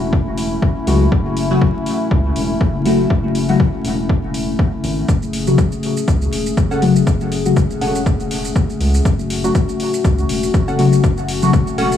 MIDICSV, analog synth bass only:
0, 0, Header, 1, 2, 480
1, 0, Start_track
1, 0, Key_signature, 3, "minor"
1, 0, Tempo, 495868
1, 1083, Time_signature, 4, 2, 24, 8
1, 11588, End_track
2, 0, Start_track
2, 0, Title_t, "Analog synth bass"
2, 0, Program_c, 0, 38
2, 0, Note_on_c, 0, 28, 88
2, 568, Note_off_c, 0, 28, 0
2, 843, Note_on_c, 0, 37, 97
2, 1039, Note_off_c, 0, 37, 0
2, 1083, Note_on_c, 0, 30, 96
2, 1528, Note_off_c, 0, 30, 0
2, 2044, Note_on_c, 0, 37, 82
2, 2240, Note_off_c, 0, 37, 0
2, 2284, Note_on_c, 0, 28, 86
2, 2479, Note_off_c, 0, 28, 0
2, 2523, Note_on_c, 0, 30, 92
2, 2968, Note_off_c, 0, 30, 0
2, 3004, Note_on_c, 0, 30, 97
2, 3448, Note_off_c, 0, 30, 0
2, 3723, Note_on_c, 0, 28, 87
2, 4408, Note_off_c, 0, 28, 0
2, 4682, Note_on_c, 0, 32, 94
2, 4879, Note_off_c, 0, 32, 0
2, 4923, Note_on_c, 0, 30, 98
2, 5368, Note_off_c, 0, 30, 0
2, 5883, Note_on_c, 0, 37, 80
2, 6079, Note_off_c, 0, 37, 0
2, 6122, Note_on_c, 0, 28, 85
2, 6319, Note_off_c, 0, 28, 0
2, 6363, Note_on_c, 0, 30, 92
2, 6808, Note_off_c, 0, 30, 0
2, 6843, Note_on_c, 0, 30, 101
2, 7288, Note_off_c, 0, 30, 0
2, 7562, Note_on_c, 0, 28, 87
2, 8248, Note_off_c, 0, 28, 0
2, 8523, Note_on_c, 0, 37, 97
2, 8719, Note_off_c, 0, 37, 0
2, 8764, Note_on_c, 0, 30, 102
2, 9208, Note_off_c, 0, 30, 0
2, 9724, Note_on_c, 0, 37, 81
2, 9920, Note_off_c, 0, 37, 0
2, 9963, Note_on_c, 0, 28, 85
2, 10159, Note_off_c, 0, 28, 0
2, 10204, Note_on_c, 0, 30, 91
2, 10648, Note_off_c, 0, 30, 0
2, 10684, Note_on_c, 0, 30, 97
2, 11129, Note_off_c, 0, 30, 0
2, 11404, Note_on_c, 0, 28, 89
2, 11588, Note_off_c, 0, 28, 0
2, 11588, End_track
0, 0, End_of_file